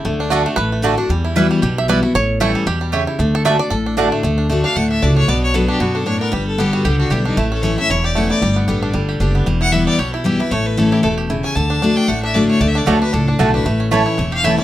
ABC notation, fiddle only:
X:1
M:4/4
L:1/8
Q:"Swing" 1/4=229
K:D
V:1 name="Fiddle"
z8 | z8 | z8 | z8 |
z3 =f ^f e d c | d c A G F A c _B | B A G F G F E _E | E A c e c d f d- |
d z6 z | z f e d c E G B | c B A G A z2 ^g | a3 g f e d c |
(3d e d c B A D F B- | B z c3 =f e d |]